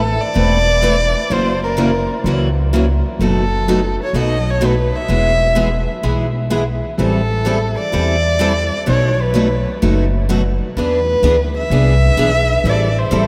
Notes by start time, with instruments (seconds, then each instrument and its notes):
Already playing: upright bass A1, violin A4
0.21 violin D5
0.34 upright bass E1, steel-string acoustic guitar E3 A3 C4 E4 B4
0.82 steel-string acoustic guitar E3 A3 C4 E4 B4
1.30 upright bass F#1, steel-string acoustic guitar C#3 E3 F#3 A#3 C#4 E4 F#4 A#4, violin C5
1.64 violin A#4
1.77 steel-string acoustic guitar C#3 E3 F#3 A#3 C#4 E4 F#4 A#4
2.24 upright bass C#2, steel-string acoustic guitar C#3 E3 F#3 A#3 C#4 E4 F#4 A#4
2.73 steel-string acoustic guitar C#3 E3 F#3 A#3 C#4 E4 F#4 A#4
3.19 upright bass F#1, steel-string acoustic guitar B2 F#3 A3 B3 D#4 F#4 A4
3.24 violin A4
3.68 steel-string acoustic guitar B2 F#3 A3 B3 D#4 F#4 A4
4.03 violin C#5
4.13 upright bass B1, steel-string acoustic guitar B2 F#3 A3 B3 D#4 F#4 A4
4.18 violin D#5
4.50 violin C#5
4.61 steel-string acoustic guitar B2 F#3 A3 B3 D#4 F#4 A4
4.66 violin B4
4.96 violin E5
5.08 upright bass E1, steel-string acoustic guitar E3 G#3 B3 E4 G#4
5.55 steel-string acoustic guitar E3 G#3 B3 E4 G#4
6.03 upright bass B1, steel-string acoustic guitar E3 G#3 B3 E4 G#4
6.50 steel-string acoustic guitar E3 G#3 B3 E4 G#4
6.98 upright bass A1, steel-string acoustic guitar E3 G3 C4 E4 A4, violin A4
7.45 steel-string acoustic guitar E3 G3 C4 E4 A4
7.79 violin D5
7.92 upright bass E2, steel-string acoustic guitar E3 G3 C4 E4 A4
8.39 steel-string acoustic guitar E3 G3 C4 E4 A4
8.86 upright bass B1, steel-string acoustic guitar B2 F#3 A3 D#4 F#4 B4, violin C#5
9.22 violin B4
9.34 steel-string acoustic guitar B2 F#3 A3 D#4 F#4 B4
9.82 upright bass F#1, steel-string acoustic guitar B2 F#3 A3 D#4 F#4 B4
10.29 steel-string acoustic guitar B2 F#3 A3 D#4 F#4 B4
10.76 upright bass E2, steel-string acoustic guitar E3 B3 D4 G#4 B4
10.81 violin B4
11.22 upright bass D2, steel-string acoustic guitar E3 B3 D4 G#4 B4
11.58 violin E5
11.70 upright bass C2, steel-string acoustic guitar E3 B3 D4 G#4 B4
12.17 upright bass B1, steel-string acoustic guitar E3 B3 D4 G#4 B4
12.64 upright bass A1, steel-string acoustic guitar E3 G3 C4 E4 A4
12.70 violin D5
12.98 violin C5
13.11 upright bass A1, steel-string acoustic guitar E3 G3 C4 E4 A4